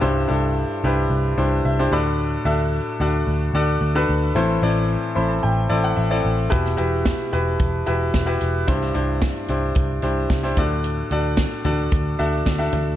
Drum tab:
HH |----------------|----------------|----------------|x-x-x-x-x-x-x-x-|
SD |----------------|----------------|----------------|-o--o-------o---|
FT |----------------|----------------|----------------|----------------|
BD |----------------|----------------|----------------|o---o---o---o---|

HH |x-x-x-x-x-x-x-x-|x-x-x-x-x-x-x-x-|
SD |-o--o-------o---|----o-------o---|
FT |----------------|------o-------o-|
BD |o---o---o---o-o-|----o---o---o---|